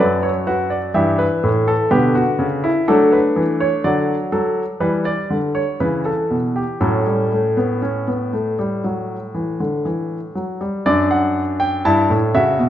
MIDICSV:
0, 0, Header, 1, 2, 480
1, 0, Start_track
1, 0, Key_signature, 2, "major"
1, 0, Tempo, 967742
1, 1423, Time_signature, 4, 2, 24, 8
1, 2869, Tempo, 1016949
1, 5269, Tempo, 985222
1, 6156, End_track
2, 0, Start_track
2, 0, Title_t, "Grand piano"
2, 0, Program_c, 0, 0
2, 0, Note_on_c, 0, 42, 59
2, 0, Note_on_c, 0, 54, 63
2, 0, Note_on_c, 0, 71, 73
2, 0, Note_on_c, 0, 74, 66
2, 107, Note_off_c, 0, 74, 0
2, 113, Note_on_c, 0, 73, 60
2, 141, Note_off_c, 0, 71, 0
2, 229, Note_off_c, 0, 73, 0
2, 232, Note_on_c, 0, 71, 55
2, 233, Note_on_c, 0, 66, 67
2, 348, Note_off_c, 0, 71, 0
2, 348, Note_on_c, 0, 74, 56
2, 381, Note_off_c, 0, 66, 0
2, 457, Note_off_c, 0, 42, 0
2, 457, Note_off_c, 0, 54, 0
2, 465, Note_off_c, 0, 74, 0
2, 467, Note_on_c, 0, 52, 60
2, 468, Note_on_c, 0, 67, 65
2, 468, Note_on_c, 0, 76, 62
2, 469, Note_on_c, 0, 43, 63
2, 584, Note_off_c, 0, 67, 0
2, 588, Note_on_c, 0, 71, 73
2, 616, Note_off_c, 0, 43, 0
2, 712, Note_on_c, 0, 45, 64
2, 735, Note_off_c, 0, 71, 0
2, 832, Note_on_c, 0, 69, 74
2, 857, Note_off_c, 0, 45, 0
2, 928, Note_off_c, 0, 52, 0
2, 929, Note_off_c, 0, 76, 0
2, 944, Note_off_c, 0, 69, 0
2, 946, Note_on_c, 0, 50, 60
2, 946, Note_on_c, 0, 67, 70
2, 947, Note_on_c, 0, 71, 63
2, 948, Note_on_c, 0, 47, 69
2, 1061, Note_off_c, 0, 67, 0
2, 1067, Note_on_c, 0, 66, 69
2, 1095, Note_off_c, 0, 47, 0
2, 1184, Note_on_c, 0, 49, 67
2, 1215, Note_off_c, 0, 66, 0
2, 1308, Note_on_c, 0, 64, 72
2, 1332, Note_off_c, 0, 49, 0
2, 1410, Note_off_c, 0, 50, 0
2, 1410, Note_off_c, 0, 71, 0
2, 1422, Note_off_c, 0, 64, 0
2, 1428, Note_on_c, 0, 62, 69
2, 1429, Note_on_c, 0, 57, 73
2, 1429, Note_on_c, 0, 69, 75
2, 1430, Note_on_c, 0, 54, 65
2, 1542, Note_off_c, 0, 69, 0
2, 1549, Note_on_c, 0, 71, 58
2, 1576, Note_off_c, 0, 54, 0
2, 1667, Note_on_c, 0, 52, 63
2, 1695, Note_off_c, 0, 71, 0
2, 1788, Note_on_c, 0, 73, 70
2, 1814, Note_off_c, 0, 52, 0
2, 1890, Note_off_c, 0, 57, 0
2, 1901, Note_off_c, 0, 73, 0
2, 1906, Note_on_c, 0, 50, 60
2, 1906, Note_on_c, 0, 74, 66
2, 1907, Note_on_c, 0, 54, 64
2, 2052, Note_off_c, 0, 50, 0
2, 2052, Note_off_c, 0, 74, 0
2, 2136, Note_off_c, 0, 54, 0
2, 2144, Note_on_c, 0, 54, 60
2, 2144, Note_on_c, 0, 69, 61
2, 2291, Note_off_c, 0, 54, 0
2, 2292, Note_off_c, 0, 69, 0
2, 2382, Note_on_c, 0, 52, 59
2, 2383, Note_on_c, 0, 55, 60
2, 2383, Note_on_c, 0, 71, 65
2, 2499, Note_off_c, 0, 71, 0
2, 2506, Note_on_c, 0, 74, 67
2, 2532, Note_off_c, 0, 52, 0
2, 2631, Note_on_c, 0, 50, 57
2, 2656, Note_off_c, 0, 74, 0
2, 2751, Note_on_c, 0, 73, 57
2, 2781, Note_off_c, 0, 50, 0
2, 2856, Note_off_c, 0, 55, 0
2, 2869, Note_off_c, 0, 73, 0
2, 2877, Note_on_c, 0, 52, 53
2, 2878, Note_on_c, 0, 49, 55
2, 2878, Note_on_c, 0, 71, 61
2, 2989, Note_off_c, 0, 71, 0
2, 2996, Note_on_c, 0, 69, 58
2, 3023, Note_off_c, 0, 49, 0
2, 3114, Note_on_c, 0, 47, 51
2, 3142, Note_off_c, 0, 69, 0
2, 3234, Note_on_c, 0, 67, 54
2, 3261, Note_off_c, 0, 47, 0
2, 3331, Note_off_c, 0, 62, 0
2, 3337, Note_off_c, 0, 52, 0
2, 3348, Note_off_c, 0, 67, 0
2, 3351, Note_on_c, 0, 45, 59
2, 3352, Note_on_c, 0, 54, 55
2, 3352, Note_on_c, 0, 61, 56
2, 3352, Note_on_c, 0, 69, 55
2, 3467, Note_off_c, 0, 54, 0
2, 3474, Note_on_c, 0, 55, 45
2, 3588, Note_off_c, 0, 55, 0
2, 3595, Note_on_c, 0, 57, 47
2, 3709, Note_off_c, 0, 57, 0
2, 3711, Note_on_c, 0, 59, 54
2, 3823, Note_off_c, 0, 61, 0
2, 3826, Note_off_c, 0, 59, 0
2, 3830, Note_on_c, 0, 61, 53
2, 3945, Note_off_c, 0, 61, 0
2, 3950, Note_on_c, 0, 59, 43
2, 4066, Note_off_c, 0, 59, 0
2, 4070, Note_on_c, 0, 57, 48
2, 4186, Note_off_c, 0, 57, 0
2, 4192, Note_on_c, 0, 55, 49
2, 4308, Note_off_c, 0, 55, 0
2, 4312, Note_on_c, 0, 54, 48
2, 4460, Note_off_c, 0, 54, 0
2, 4549, Note_on_c, 0, 52, 46
2, 4666, Note_off_c, 0, 52, 0
2, 4671, Note_on_c, 0, 50, 46
2, 4786, Note_off_c, 0, 50, 0
2, 4789, Note_on_c, 0, 52, 48
2, 4938, Note_off_c, 0, 52, 0
2, 5012, Note_off_c, 0, 45, 0
2, 5012, Note_off_c, 0, 69, 0
2, 5026, Note_on_c, 0, 54, 46
2, 5143, Note_off_c, 0, 54, 0
2, 5146, Note_on_c, 0, 55, 50
2, 5262, Note_off_c, 0, 55, 0
2, 5264, Note_on_c, 0, 42, 72
2, 5264, Note_on_c, 0, 62, 69
2, 5264, Note_on_c, 0, 74, 81
2, 5383, Note_off_c, 0, 74, 0
2, 5385, Note_on_c, 0, 78, 67
2, 5536, Note_off_c, 0, 78, 0
2, 5624, Note_on_c, 0, 79, 76
2, 5733, Note_off_c, 0, 42, 0
2, 5733, Note_off_c, 0, 62, 0
2, 5743, Note_off_c, 0, 79, 0
2, 5747, Note_on_c, 0, 43, 68
2, 5747, Note_on_c, 0, 64, 71
2, 5748, Note_on_c, 0, 81, 82
2, 5864, Note_off_c, 0, 43, 0
2, 5869, Note_on_c, 0, 45, 58
2, 5896, Note_off_c, 0, 64, 0
2, 5897, Note_off_c, 0, 81, 0
2, 5985, Note_off_c, 0, 45, 0
2, 5987, Note_on_c, 0, 49, 68
2, 5988, Note_on_c, 0, 76, 76
2, 5989, Note_on_c, 0, 66, 69
2, 6104, Note_off_c, 0, 49, 0
2, 6107, Note_on_c, 0, 47, 62
2, 6136, Note_off_c, 0, 76, 0
2, 6137, Note_off_c, 0, 66, 0
2, 6156, Note_off_c, 0, 47, 0
2, 6156, End_track
0, 0, End_of_file